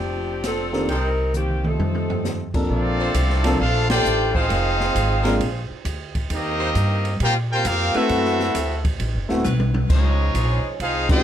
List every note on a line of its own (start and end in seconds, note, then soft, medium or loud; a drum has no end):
0.00 0.84 F1 medium
0.00 0.44 F3 medium
0.00 0.44 C4 medium
0.00 0.44 D4 medium
0.00 0.44 G4 medium
0.44 0.87 F3 medium
0.44 0.87 C4 medium
0.44 0.87 D4 medium
0.44 0.87 A4 medium
0.44 snare medium
0.44 hi-hat pedal medium
0.44 ride medium
0.72 0.87 D#3 medium
0.72 0.87 A#3 medium
0.72 0.87 C4 medium
0.72 0.87 D4 medium
0.72 0.88 G4 medium
0.72 snare soft
0.88 1.75 C2 medium
0.88 1.31 G3 medium
0.88 1.32 C4 medium
0.88 1.09 D#4 medium
0.88 1.32 D#4 medium
0.88 1.09 A#4 medium
0.88 1.32 A#4 medium
0.88 1.09 C5 medium
0.88 1.09 G5 medium
0.88 kick soft
0.88 ride medium
1.34 1.65 D#3 medium
1.34 1.65 A#3 medium
1.34 1.64 C4 medium
1.34 1.65 G4 medium
1.34 hi-hat pedal medium
1.34 mid tom soft
1.49 mid tom soft
1.64 2.51 C3 medium
1.64 2.51 D#3 medium
1.64 2.52 F3 medium
1.64 2.51 A3 medium
1.64 2.51 C4 medium
1.64 2.51 D#4 medium
1.64 2.51 A4 medium
1.64 mid tom medium
1.79 2.66 F2 medium
1.79 high tom medium
1.95 high tom medium
2.10 floor tom medium
2.25 snare medium
2.25 hi-hat pedal soft
2.54 3.12 F3 medium
2.54 3.12 A#3 medium
2.54 3.12 C4 medium
2.54 3.12 D4 medium
2.54 3.12 A4 medium
2.54 kick medium
2.54 crash medium
2.68 3.13 A#1 medium
2.68 3.55 F3 medium
2.68 3.56 A3 medium
2.68 3.57 C4 medium
2.68 3.56 D4 medium
2.68 3.57 F4 medium
2.68 3.56 A4 medium
2.68 3.56 D5 medium
2.68 kick soft
2.99 3.57 A#2 loud
2.99 3.57 D4 loud
2.99 3.57 A4 loud
2.99 3.57 C5 loud
3.14 3.58 C2 loud
3.14 kick soft
3.14 hi-hat pedal medium
3.14 ride medium
3.30 snare soft
3.44 3.58 F3 medium
3.44 3.58 A#3 medium
3.44 3.59 C4 medium
3.44 3.59 D4 medium
3.44 3.59 A4 medium
3.44 snare medium
3.44 ride medium
3.60 4.04 A#1 loud
3.60 3.88 A3 medium
3.60 3.87 D4 medium
3.60 3.90 D4 medium
3.60 3.90 F4 medium
3.60 3.90 A4 loud
3.60 3.89 C5 medium
3.60 3.90 F5 loud
3.60 kick soft
3.89 4.31 A3 loud
3.89 4.31 D4 loud
3.89 4.32 F4 loud
3.89 4.31 G4 loud
3.89 4.32 C5 loud
3.89 4.32 D5 loud
3.89 4.32 G5 loud
3.89 snare medium
3.89 ride medium
4.05 4.49 A1 medium
4.05 hi-hat pedal medium
4.33 5.69 G#3 loud
4.33 4.44 G#3 loud
4.33 5.69 C4 loud
4.33 4.44 D#4 loud
4.33 5.40 D#4 loud
4.33 5.69 F4 loud
4.33 4.44 G4 loud
4.33 5.70 G#4 loud
4.33 4.45 C5 loud
4.33 5.70 C5 medium
4.33 5.70 F5 loud
4.33 kick medium
4.48 4.94 F1 medium
4.48 4.69 G#3 medium
4.48 4.69 D#4 medium
4.48 4.69 G4 medium
4.48 4.69 A#4 medium
4.48 kick soft
4.48 ride medium
4.80 snare soft
4.95 5.39 G#1 loud
4.95 kick soft
4.95 hi-hat pedal medium
4.95 ride medium
5.23 5.34 G#3 loud
5.23 5.39 G#3 medium
5.23 5.39 A#3 medium
5.23 5.39 C4 medium
5.23 5.34 D4 loud
5.23 5.39 D4 medium
5.23 5.34 F4 loud
5.23 5.39 F4 medium
5.23 5.34 A#4 loud
5.23 snare soft
5.23 ride medium
5.40 5.68 A#1 medium
5.40 kick soft
5.40 ride medium
5.70 muted upright bass stroke soft
5.85 6.29 D2 medium
5.85 kick soft
5.85 hi-hat pedal medium
5.85 ride medium
6.15 kick medium
6.15 ride medium
6.30 6.74 D#2 medium
6.30 7.17 A#3 medium
6.30 7.17 C4 medium
6.30 7.17 D#4 medium
6.30 kick soft
6.30 ride medium
6.34 7.18 C4 medium
6.34 7.18 G4 medium
6.34 7.18 A#4 medium
6.34 7.18 D#5 loud
6.59 6.70 G3 loud
6.59 6.70 D#4 loud
6.59 6.70 F4 medium
6.59 6.70 C5 loud
6.75 7.19 G2 loud
6.75 kick soft
6.75 hi-hat pedal medium
6.75 ride medium
7.05 ride medium
7.20 7.64 A#2 medium
7.20 7.35 A#3 loud
7.20 7.35 C4 loud
7.20 7.36 F4 loud
7.20 7.35 G4 loud
7.20 7.36 A#4 loud
7.20 7.36 C5 loud
7.20 7.36 G5 loud
7.20 kick soft
7.20 ride medium
7.52 7.66 A#3 medium
7.52 7.66 C4 loud
7.52 7.65 F4 loud
7.52 7.66 G4 medium
7.52 7.65 A#4 medium
7.52 7.65 C5 medium
7.52 7.65 G5 loud
7.65 7.93 F2 loud
7.65 7.96 A#3 medium
7.65 7.95 C4 medium
7.65 7.96 C4 loud
7.65 7.95 F4 medium
7.65 7.96 G4 loud
7.65 7.96 A#4 loud
7.65 7.96 F5 loud
7.65 kick soft
7.65 hi-hat pedal medium
7.65 ride medium
7.94 8.05 F#3 loud
7.94 8.52 A3 medium
7.94 8.85 A3 medium
7.94 8.05 C4 loud
7.94 8.52 C4 medium
7.94 8.85 C4 medium
7.94 8.86 C4 medium
7.94 8.05 E4 loud
7.94 8.52 E4 medium
7.94 8.85 E4 medium
7.94 8.53 F#4 medium
7.94 8.85 F#4 medium
7.94 8.86 A4 medium
7.94 8.05 B4 loud
7.94 8.52 B4 medium
7.94 8.86 E5 loud
7.94 muted upright bass stroke soft
7.94 ride soft
8.09 8.53 F#2 loud
8.09 kick soft
8.09 ride medium
8.25 snare soft
8.40 snare medium
8.55 8.98 D2 medium
8.55 kick soft
8.55 hi-hat pedal medium
8.55 ride medium
8.85 kick medium
8.85 ride medium
9.00 9.16 A1 medium
9.00 kick soft
9.00 ride medium
9.15 9.30 F#1 medium
9.29 9.44 D1 medium
9.29 9.43 A3 medium
9.29 9.43 B3 medium
9.29 9.43 C4 medium
9.29 9.44 E4 medium
9.29 9.44 F#4 medium
9.29 snare soft
9.44 9.88 B1 loud
9.44 9.90 F#3 loud
9.44 9.89 C4 medium
9.44 9.90 E4 medium
9.44 9.90 B4 loud
9.44 hi-hat pedal medium
9.44 high tom medium
9.60 high tom medium
9.74 high tom medium
9.89 10.33 C#2 loud
9.89 10.10 F3 medium
9.89 10.76 F3 medium
9.89 10.76 G#3 medium
9.89 10.77 G#3 medium
9.89 10.09 C#4 medium
9.89 10.77 C#4 medium
9.89 10.10 D#4 medium
9.89 10.77 D#4 medium
9.89 10.77 F4 medium
9.89 10.10 C5 loud
9.89 10.77 C#5 medium
9.89 kick medium
9.89 crash medium
10.34 10.62 A#1 loud
10.34 kick soft
10.34 hi-hat pedal medium
10.34 ride medium
10.65 muted upright bass stroke soft
10.80 11.23 C2 medium
10.80 11.10 G#3 medium
10.80 11.10 C4 medium
10.80 11.11 D#4 medium
10.80 11.10 F4 medium
10.80 11.11 G#4 medium
10.80 11.10 C5 medium
10.80 11.10 F5 loud
10.80 kick soft
10.80 ride medium
11.09 11.23 G#3 medium
11.09 11.23 C4 medium
11.09 11.23 C#4 medium
11.09 11.23 D#4 medium
11.09 11.23 F4 medium
11.09 11.23 G4 medium
11.09 11.23 C5 medium
11.09 11.23 D#5 loud
11.09 11.23 G5 loud
11.09 kick loud
11.09 crash medium